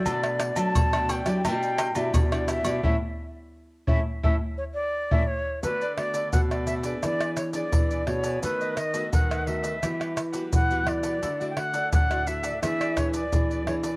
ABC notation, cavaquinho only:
X:1
M:4/4
L:1/16
Q:1/4=86
K:D
V:1 name="Cavaquinho"
[DABd] [ABd] z [ABd]2 [ABd] [DABd] [ABd] [EGBd] [GBd] z [GBd]2 [GBd] [EGBd] [GBd] | [EAc] z4 z [EAc] z [EAc] z4 [EAc] z2 | [FABd] [ABd] z [ABd] [FABd] [ABd] [FABd] [ABd] [E^GBd] [GBd] z [GBd]2 [GBd]2 [GBd] | [^DAB^d] [ABd] z [ABd] [DABd] [ABd] [DABd] [ABd] [EGBf] [GBf] z [GBf]2 [GBf]2 [GBf] |
[EAdf] [Adf] z [Adf] [EAdf] [Adf] [EAdf] [Adf] [E^GBd] [GBd] z [GBd]2 [GBd]2 [GBd] |]